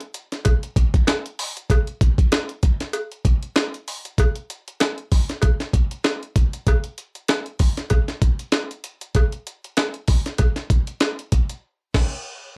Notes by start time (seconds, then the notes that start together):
0.00 closed hi-hat
0.14 closed hi-hat
0.32 snare, closed hi-hat
0.45 kick, closed hi-hat, cowbell
0.63 closed hi-hat
0.76 kick, closed hi-hat
0.94 kick, closed hi-hat
1.07 snare, closed hi-hat, cowbell
1.26 closed hi-hat
1.39 open hi-hat
1.57 closed hi-hat
1.70 kick, closed hi-hat, cowbell
1.87 closed hi-hat
2.01 kick, closed hi-hat
2.18 kick, closed hi-hat
2.32 snare, closed hi-hat, cowbell
2.49 closed hi-hat
2.63 kick, closed hi-hat
2.80 snare, closed hi-hat
2.93 closed hi-hat, cowbell
3.12 closed hi-hat
3.25 kick, closed hi-hat
3.43 closed hi-hat
3.56 snare, closed hi-hat, cowbell
3.74 closed hi-hat
3.88 open hi-hat
4.05 closed hi-hat
4.18 kick, closed hi-hat, cowbell
4.35 closed hi-hat
4.50 closed hi-hat
4.68 closed hi-hat
4.80 snare, closed hi-hat, cowbell
4.98 closed hi-hat
5.12 kick, open hi-hat
5.29 snare, closed hi-hat
5.42 kick, closed hi-hat, cowbell
5.60 snare, closed hi-hat
5.73 kick, closed hi-hat
5.91 closed hi-hat
6.04 snare, closed hi-hat, cowbell
6.23 closed hi-hat
6.36 kick, closed hi-hat
6.53 closed hi-hat
6.67 kick, closed hi-hat, cowbell
6.84 closed hi-hat
6.98 closed hi-hat
7.15 closed hi-hat
7.28 snare, closed hi-hat, cowbell
7.46 closed hi-hat
7.59 kick, open hi-hat
7.77 snare, closed hi-hat
7.90 kick, closed hi-hat, cowbell
8.08 snare, closed hi-hat
8.22 kick, closed hi-hat
8.39 closed hi-hat
8.52 snare, closed hi-hat, cowbell
8.71 closed hi-hat
8.84 closed hi-hat
9.01 closed hi-hat
9.15 kick, closed hi-hat, cowbell
9.32 closed hi-hat
9.47 closed hi-hat
9.64 closed hi-hat
9.77 snare, closed hi-hat, cowbell
9.94 closed hi-hat
10.08 kick, open hi-hat
10.26 snare, closed hi-hat
10.38 kick, closed hi-hat, cowbell
10.56 snare, closed hi-hat
10.70 kick, closed hi-hat
10.87 closed hi-hat
11.00 snare, closed hi-hat, cowbell
11.19 closed hi-hat
11.32 kick, closed hi-hat
11.49 closed hi-hat
11.94 kick, snare, crash